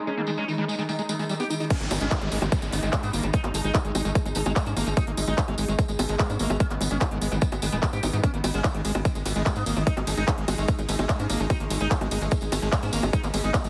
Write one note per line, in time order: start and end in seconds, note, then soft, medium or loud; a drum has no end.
0.00 1.69 G#3 medium
0.00 1.69 D#4 medium
0.00 1.70 G#4 medium
0.00 1.70 D#5 medium
0.00 1.70 A#5 medium
0.07 0.10 G#3 medium
0.07 0.14 C#4 loud
0.07 tambourine medium
0.17 0.24 D#3 medium
0.17 0.22 A#3 medium
0.27 0.34 D#3 medium
0.27 0.30 G#3 loud
0.27 tambourine loud
0.37 0.44 G#3 medium
0.37 0.44 C#4 medium
0.37 tambourine soft
0.48 0.55 D#3 medium
0.48 0.52 D#4 medium
0.48 tambourine soft
0.58 0.65 D#3 medium
0.58 0.65 G#3 loud
0.68 0.75 G#3 medium
0.68 tambourine medium
0.79 0.85 D#3 medium
0.79 0.83 G#3 medium
0.79 tambourine soft
0.89 0.95 D#3 medium
0.89 0.91 G#3 medium
0.89 tambourine medium
0.99 1.02 G#3 loud
0.99 tambourine soft
1.09 1.16 D#3 medium
1.09 1.14 G#3 medium
1.09 tambourine loud
1.19 1.26 D#3 medium
1.19 1.24 G#3 loud
1.19 tambourine soft
1.29 1.36 D#3 medium
1.29 1.34 G3 medium
1.29 tambourine soft
1.40 1.44 B3 medium
1.40 1.46 G4 medium
1.40 tambourine soft
1.50 1.57 D#3 medium
1.50 1.54 D#4 medium
1.50 tambourine medium
1.60 1.67 D#3 medium
1.60 1.65 D#4 medium
1.60 tambourine soft
1.70 1.73 G#3 medium
1.70 13.69 G#3 medium
1.70 1.77 C#4 loud
1.70 4.99 D#4 medium
1.70 kick loud
1.70 closed hi-hat loud
1.70 crash loud
1.70 tambourine medium
1.70 high bongo soft
1.70 downlifter medium
1.81 1.88 G#1 medium
1.81 1.87 D#3 medium
1.81 1.85 A#3 medium
1.81 closed hi-hat medium
1.91 1.98 G#1 loud
1.91 1.97 D#3 medium
1.91 1.93 G#3 loud
1.91 open hi-hat loud
1.91 tambourine loud
1.91 high bongo medium
2.01 2.08 G#1 medium
2.01 2.08 G#3 medium
2.01 2.08 C#4 medium
2.01 closed hi-hat medium
2.01 tambourine soft
2.11 2.18 D#3 medium
2.11 2.16 D#4 medium
2.11 kick loud
2.11 clap loud
2.11 closed hi-hat loud
2.11 tambourine medium
2.21 2.29 G#1 medium
2.21 2.28 D#3 medium
2.21 2.28 G#3 loud
2.21 closed hi-hat medium
2.21 high bongo soft
2.32 2.39 G#1 loud
2.32 2.38 G#3 medium
2.32 open hi-hat medium
2.32 tambourine medium
2.42 2.49 G#1 medium
2.42 2.48 D#3 medium
2.42 2.46 G#3 medium
2.42 closed hi-hat medium
2.42 tambourine soft
2.42 high bongo medium
2.52 2.59 D#3 medium
2.52 2.55 G#3 medium
2.52 kick loud
2.52 closed hi-hat loud
2.52 tambourine soft
2.62 2.70 G#1 medium
2.62 2.65 G#3 loud
2.62 closed hi-hat medium
2.62 tambourine soft
2.72 2.80 G#1 loud
2.72 2.79 D#3 medium
2.72 2.75 B3 medium
2.72 open hi-hat loud
2.72 tambourine medium
2.72 high bongo soft
2.83 2.90 G#1 medium
2.83 2.89 D#3 medium
2.83 2.89 G#3 medium
2.83 closed hi-hat medium
2.83 tambourine soft
2.93 2.99 D#3 medium
2.93 3.05 G#3 medium
2.93 kick loud
2.93 clap loud
2.93 closed hi-hat loud
2.93 tambourine medium
2.93 high bongo medium
3.03 3.10 G#2 medium
3.03 3.06 B3 loud
3.03 3.10 B3 loud
3.03 closed hi-hat medium
3.03 tambourine soft
3.13 3.21 G#1 loud
3.13 3.20 D#3 medium
3.13 3.25 A#3 medium
3.13 open hi-hat medium
3.13 tambourine medium
3.23 3.31 G#1 loud
3.23 3.30 D#3 medium
3.23 3.26 G#3 medium
3.23 closed hi-hat medium
3.23 tambourine soft
3.23 high bongo soft
3.33 3.36 G#3 medium
3.33 3.40 D#4 loud
3.33 kick loud
3.33 closed hi-hat medium
3.33 tambourine medium
3.44 3.51 G#1 medium
3.44 3.50 G#3 medium
3.44 3.48 A#3 medium
3.44 clap soft
3.44 closed hi-hat medium
3.44 high bongo medium
3.54 3.61 G#1 loud
3.54 3.57 G#3 loud
3.54 3.61 G#3 medium
3.54 open hi-hat loud
3.54 tambourine loud
3.64 3.72 G#1 medium
3.64 3.71 G#3 medium
3.64 3.71 D#4 medium
3.64 closed hi-hat medium
3.64 tambourine soft
3.75 3.81 G#3 medium
3.75 3.79 D#4 medium
3.75 kick loud
3.75 clap loud
3.75 closed hi-hat loud
3.75 tambourine medium
3.75 high bongo soft
3.85 3.92 G#1 medium
3.85 3.91 G#3 medium
3.85 3.91 G#3 loud
3.85 closed hi-hat medium
3.95 4.02 G#1 loud
3.95 4.02 G#3 medium
3.95 open hi-hat medium
3.95 tambourine loud
3.95 high bongo medium
4.05 4.12 G#1 loud
4.05 4.10 G#3 medium
4.05 4.12 G#3 medium
4.05 closed hi-hat medium
4.05 tambourine soft
4.15 4.18 G#3 medium
4.15 4.22 G#3 medium
4.15 kick loud
4.15 closed hi-hat loud
4.15 tambourine medium
4.26 4.33 G#1 medium
4.26 4.28 G#3 loud
4.26 closed hi-hat medium
4.26 tambourine soft
4.26 high bongo soft
4.35 4.43 G#1 loud
4.35 4.42 G#3 medium
4.35 4.38 B3 medium
4.35 open hi-hat loud
4.35 tambourine medium
4.46 4.53 G#1 medium
4.46 4.52 G#3 medium
4.46 4.53 G#3 medium
4.46 closed hi-hat medium
4.46 tambourine soft
4.46 high bongo medium
4.56 4.63 G#3 medium
4.56 4.68 G#3 medium
4.56 kick loud
4.56 clap loud
4.56 closed hi-hat medium
4.56 tambourine medium
4.66 4.74 G#2 medium
4.66 4.69 B3 loud
4.66 4.73 C#4 loud
4.66 closed hi-hat medium
4.66 tambourine soft
4.77 4.84 G#1 loud
4.77 4.83 G#3 medium
4.77 4.88 A#3 medium
4.77 open hi-hat loud
4.77 tambourine medium
4.77 high bongo soft
4.87 4.94 G#1 loud
4.87 4.93 G#3 medium
4.87 4.89 G#3 medium
4.87 closed hi-hat medium
4.87 tambourine soft
4.97 5.00 G#3 medium
4.97 8.26 B3 medium
4.97 5.03 D#4 loud
4.97 kick loud
4.97 closed hi-hat medium
4.97 tambourine medium
4.97 high bongo medium
5.07 5.14 G#1 medium
5.07 5.14 G#3 medium
5.07 5.12 A#3 medium
5.07 closed hi-hat medium
5.17 5.25 G#1 loud
5.17 5.24 G#3 medium
5.17 5.20 G#3 loud
5.17 open hi-hat loud
5.17 tambourine medium
5.27 5.35 G#1 medium
5.27 5.34 G#3 medium
5.27 5.34 D#4 medium
5.27 closed hi-hat medium
5.27 tambourine soft
5.27 high bongo soft
5.38 5.44 G#3 medium
5.38 5.42 D#4 medium
5.38 kick loud
5.38 clap loud
5.38 closed hi-hat medium
5.38 tambourine medium
5.48 5.55 G#1 medium
5.48 5.55 G#3 medium
5.48 5.55 G#3 loud
5.48 closed hi-hat medium
5.48 high bongo medium
5.58 5.65 G#1 loud
5.58 5.65 G#3 medium
5.58 open hi-hat loud
5.58 tambourine medium
5.68 5.76 G#1 medium
5.68 5.73 G#3 medium
5.68 5.75 G#3 medium
5.68 closed hi-hat medium
5.68 tambourine soft
5.79 5.85 G#3 medium
5.79 5.81 G#3 medium
5.79 kick loud
5.79 closed hi-hat medium
5.79 tambourine medium
5.79 high bongo soft
5.88 5.96 G#1 medium
5.88 5.91 G#3 loud
5.88 closed hi-hat medium
5.88 tambourine soft
5.99 6.06 G#1 loud
5.99 6.06 G#3 medium
5.99 6.02 B3 medium
5.99 open hi-hat loud
5.99 tambourine loud
5.99 high bongo medium
6.08 6.16 G#1 medium
6.08 6.16 G#3 medium
6.08 closed hi-hat medium
6.08 tambourine soft
6.19 6.26 G#3 medium
6.19 6.31 G#3 medium
6.19 kick loud
6.19 clap loud
6.19 closed hi-hat medium
6.19 tambourine medium
6.30 6.37 G#2 medium
6.30 6.32 B3 loud
6.30 6.36 C#4 loud
6.30 closed hi-hat medium
6.30 tambourine soft
6.30 high bongo soft
6.39 6.47 G#1 loud
6.39 6.46 G#3 medium
6.39 6.52 A#3 medium
6.39 open hi-hat loud
6.39 tambourine medium
6.50 6.57 G#1 medium
6.50 6.53 G#3 medium
6.50 6.57 G#3 medium
6.50 closed hi-hat medium
6.50 tambourine soft
6.50 high bongo medium
6.60 6.63 G#3 medium
6.60 6.67 C#4 loud
6.60 kick loud
6.60 closed hi-hat medium
6.60 tambourine medium
6.70 6.78 G#1 medium
6.70 6.77 D#3 medium
6.70 6.75 A#3 medium
6.70 clap soft
6.70 closed hi-hat medium
6.81 6.88 G#1 loud
6.81 6.87 D#3 medium
6.81 6.83 G#3 loud
6.81 open hi-hat loud
6.81 tambourine loud
6.81 high bongo soft
6.91 6.98 G#1 medium
6.91 6.98 G#3 medium
6.91 6.97 C#4 medium
6.91 tambourine soft
7.01 7.08 D#3 medium
7.01 7.06 D#4 medium
7.01 kick loud
7.01 clap loud
7.01 closed hi-hat medium
7.01 tambourine medium
7.01 high bongo medium
7.11 7.18 G#1 medium
7.11 7.18 D#3 medium
7.11 7.18 G#3 loud
7.11 closed hi-hat medium
7.21 7.29 G#1 loud
7.21 7.28 G#3 medium
7.21 open hi-hat loud
7.21 tambourine medium
7.32 7.39 G#1 loud
7.32 7.38 D#3 medium
7.32 7.36 G#3 medium
7.32 closed hi-hat medium
7.32 tambourine soft
7.32 high bongo soft
7.41 7.48 D#3 medium
7.41 7.45 G#3 medium
7.41 kick loud
7.41 closed hi-hat medium
7.41 tambourine medium
7.52 7.59 G#1 medium
7.52 7.55 G#3 loud
7.52 closed hi-hat medium
7.52 tambourine soft
7.52 high bongo medium
7.62 7.70 G#1 loud
7.62 7.69 D#3 medium
7.62 7.67 G#3 medium
7.62 open hi-hat loud
7.62 tambourine loud
7.72 7.80 D#1 medium
7.72 7.79 D#3 medium
7.72 7.77 G#3 loud
7.72 closed hi-hat medium
7.72 tambourine soft
7.83 7.89 D#3 medium
7.83 7.87 G3 medium
7.83 kick loud
7.83 clap loud
7.83 closed hi-hat medium
7.83 tambourine medium
7.83 high bongo soft
7.93 8.00 G#2 medium
7.93 7.97 B3 medium
7.93 7.99 G4 loud
7.93 closed hi-hat medium
7.93 tambourine soft
8.03 8.10 G#1 loud
8.03 8.10 D#3 medium
8.03 8.08 D#4 medium
8.03 open hi-hat loud
8.03 tambourine loud
8.03 high bongo medium
8.13 8.21 G#2 loud
8.13 8.20 D#3 medium
8.13 8.18 D#4 medium
8.13 closed hi-hat medium
8.13 tambourine soft
8.23 8.26 G#3 medium
8.23 8.30 C#4 loud
8.23 11.52 D#4 medium
8.23 kick loud
8.23 closed hi-hat medium
8.23 tambourine soft
8.23 high bongo soft
8.34 8.41 G#1 medium
8.34 8.40 D#3 medium
8.34 8.38 A#3 medium
8.34 closed hi-hat medium
8.44 8.51 G#1 loud
8.44 8.50 D#3 medium
8.44 8.47 G#3 loud
8.44 open hi-hat loud
8.44 ride medium
8.44 tambourine loud
8.44 high bongo medium
8.54 8.61 G#1 medium
8.54 8.61 G#3 medium
8.54 8.61 C#4 medium
8.54 closed hi-hat medium
8.54 tambourine soft
8.64 8.71 D#3 medium
8.64 8.69 D#4 medium
8.64 kick loud
8.64 clap loud
8.64 closed hi-hat medium
8.64 tambourine soft
8.74 8.82 G#1 medium
8.74 8.81 D#3 medium
8.74 8.81 G#3 loud
8.74 closed hi-hat medium
8.74 high bongo soft
8.85 8.92 G#1 loud
8.85 8.91 G#3 medium
8.85 open hi-hat medium
8.85 ride medium
8.85 tambourine medium
8.95 9.02 G#1 loud
8.95 9.01 D#3 medium
8.95 8.99 G#3 medium
8.95 closed hi-hat medium
8.95 high bongo medium
9.05 9.12 D#3 medium
9.05 9.08 G#3 medium
9.05 kick loud
9.05 closed hi-hat medium
9.05 tambourine medium
9.15 9.23 G#1 medium
9.15 9.18 G#3 loud
9.15 closed hi-hat medium
9.15 tambourine soft
9.26 9.33 G#1 loud
9.26 9.32 D#3 medium
9.26 9.28 B3 medium
9.26 open hi-hat loud
9.26 ride medium
9.26 tambourine medium
9.26 high bongo soft
9.35 9.43 G#1 loud
9.35 9.42 D#3 medium
9.35 9.42 G#3 medium
9.35 closed hi-hat medium
9.35 tambourine soft
9.46 9.52 D#3 medium
9.46 9.58 G#3 medium
9.46 kick loud
9.46 clap loud
9.46 closed hi-hat medium
9.46 tambourine medium
9.46 high bongo medium
9.56 9.63 G#2 medium
9.56 9.63 B3 loud
9.56 9.59 B3 loud
9.56 closed hi-hat medium
9.56 tambourine soft
9.66 9.74 G#1 loud
9.66 9.73 D#3 medium
9.66 9.78 A#3 loud
9.66 open hi-hat medium
9.66 ride medium
9.66 tambourine medium
9.77 9.84 G#1 loud
9.77 9.83 D#3 medium
9.77 9.79 G#3 medium
9.77 tambourine soft
9.77 high bongo soft
9.87 9.89 G#3 medium
9.87 9.93 D#4 loud
9.87 kick loud
9.87 closed hi-hat medium
9.87 tambourine soft
9.97 10.04 G#1 medium
9.97 10.03 G#3 medium
9.97 10.01 A#3 medium
9.97 clap soft
9.97 closed hi-hat medium
9.97 high bongo medium
10.07 10.14 G#1 loud
10.07 10.14 G#3 medium
10.07 10.10 G#3 loud
10.07 open hi-hat loud
10.07 ride medium
10.07 tambourine medium
10.17 10.25 G#1 medium
10.17 10.24 G#3 medium
10.17 10.24 D#4 loud
10.17 closed hi-hat medium
10.17 tambourine soft
10.28 10.34 G#3 medium
10.28 10.32 D#4 medium
10.28 kick loud
10.28 clap loud
10.28 closed hi-hat medium
10.28 tambourine medium
10.28 high bongo soft
10.38 10.45 G#1 medium
10.38 10.44 G#3 medium
10.38 10.44 G#3 loud
10.38 closed hi-hat medium
10.48 10.55 G#1 loud
10.48 10.55 G#3 medium
10.48 open hi-hat medium
10.48 ride medium
10.48 tambourine medium
10.48 high bongo medium
10.58 10.65 G#1 loud
10.58 10.63 G#3 medium
10.58 10.65 G#3 medium
10.58 closed hi-hat medium
10.58 tambourine soft
10.68 10.75 G#3 medium
10.68 10.71 G#3 medium
10.68 kick loud
10.68 closed hi-hat loud
10.68 tambourine medium
10.79 10.86 G#1 medium
10.79 10.81 G#3 loud
10.79 closed hi-hat medium
10.79 tambourine soft
10.79 high bongo soft
10.89 10.96 G#1 loud
10.89 10.95 G#3 medium
10.89 10.91 B3 medium
10.89 open hi-hat loud
10.89 ride medium
10.89 tambourine loud
10.99 11.06 G#1 loud
10.99 11.06 G#3 medium
10.99 closed hi-hat medium
10.99 tambourine soft
10.99 high bongo medium
11.09 11.21 G#3 medium
11.09 11.16 G#3 medium
11.09 kick loud
11.09 clap loud
11.09 closed hi-hat medium
11.09 tambourine medium
11.19 11.27 G#2 medium
11.19 11.22 B3 loud
11.19 11.26 C#4 loud
11.19 closed hi-hat medium
11.19 tambourine soft
11.30 11.37 G#1 loud
11.30 11.36 G#3 medium
11.30 11.41 A#3 loud
11.30 open hi-hat medium
11.30 ride medium
11.30 tambourine medium
11.30 high bongo soft
11.40 11.47 G#1 loud
11.40 11.42 G#3 medium
11.40 11.46 G#3 medium
11.40 closed hi-hat medium
11.40 tambourine soft
11.50 11.53 G#3 medium
11.50 13.69 B3 medium
11.50 11.57 D#4 loud
11.50 kick loud
11.50 closed hi-hat medium
11.50 tambourine soft
11.50 high bongo medium
11.60 11.67 G#1 medium
11.60 11.67 G#3 medium
11.60 11.65 A#3 medium
11.60 closed hi-hat medium
11.70 11.78 G#1 loud
11.70 11.77 G#3 medium
11.70 11.73 G#3 loud
11.70 open hi-hat loud
11.70 ride medium
11.70 tambourine medium
11.80 11.88 G#1 medium
11.80 11.87 G#3 medium
11.80 11.87 D#4 medium
11.80 closed hi-hat medium
11.80 tambourine soft
11.80 high bongo soft
11.91 11.97 G#3 medium
11.91 11.95 D#4 medium
11.91 kick loud
11.91 clap loud
11.91 closed hi-hat loud
11.91 tambourine soft
12.01 12.08 G#1 medium
12.01 12.08 G#3 medium
12.01 12.08 G#3 loud
12.01 closed hi-hat medium
12.01 high bongo medium
12.11 12.19 G#1 loud
12.11 12.18 G#3 medium
12.11 open hi-hat medium
12.11 ride medium
12.11 tambourine medium
12.21 12.29 G#1 loud
12.21 12.28 G#3 medium
12.21 12.26 G#3 medium
12.21 closed hi-hat medium
12.21 tambourine soft
12.31 12.38 G#3 medium
12.31 12.34 G#3 medium
12.31 kick loud
12.31 closed hi-hat medium
12.31 tambourine medium
12.31 high bongo soft
12.41 12.49 G#1 medium
12.41 12.45 G#3 loud
12.41 closed hi-hat medium
12.41 tambourine soft
12.52 12.59 G#1 loud
12.52 12.59 G#3 medium
12.52 12.55 B3 medium
12.52 open hi-hat loud
12.52 ride medium
12.52 tambourine loud
12.52 high bongo medium
12.62 12.70 G#1 loud
12.62 12.69 G#3 medium
12.62 closed hi-hat medium
12.62 tambourine soft
12.72 12.79 G#3 medium
12.72 12.84 G#3 medium
12.72 kick loud
12.72 clap loud
12.72 closed hi-hat loud
12.72 tambourine medium
12.83 12.90 G#2 medium
12.83 12.85 B3 loud
12.83 12.89 C#4 loud
12.83 closed hi-hat medium
12.83 tambourine soft
12.83 high bongo soft
12.93 13.00 G#1 loud
12.93 12.99 G#3 medium
12.93 13.05 A#3 loud
12.93 open hi-hat medium
12.93 ride medium
12.93 tambourine medium
13.03 13.10 G#1 loud
13.03 13.10 G#3 medium
13.03 13.06 G#3 medium
13.03 closed hi-hat medium
13.03 tambourine soft
13.03 high bongo medium
13.13 13.16 G#3 medium
13.13 13.20 D#4 loud
13.13 kick loud
13.13 closed hi-hat loud
13.13 tambourine soft
13.23 13.31 G#1 medium
13.23 13.30 G#3 medium
13.23 13.28 A#3 medium
13.23 clap soft
13.23 closed hi-hat medium
13.23 tambourine soft
13.34 13.41 G#1 loud
13.34 13.40 G#3 medium
13.34 13.36 G#3 loud
13.34 open hi-hat loud
13.34 ride medium
13.34 tambourine medium
13.34 high bongo soft
13.44 13.51 G#1 medium
13.44 13.51 G#3 medium
13.44 13.50 D#4 medium
13.44 closed hi-hat medium
13.44 tambourine soft
13.54 13.61 G#3 medium
13.54 13.59 D#4 medium
13.54 kick loud
13.54 clap loud
13.54 closed hi-hat loud
13.54 tambourine medium
13.54 high bongo medium
13.64 13.69 G#1 medium
13.64 13.69 G#3 medium
13.64 13.69 G#3 loud
13.64 closed hi-hat medium
13.64 tambourine soft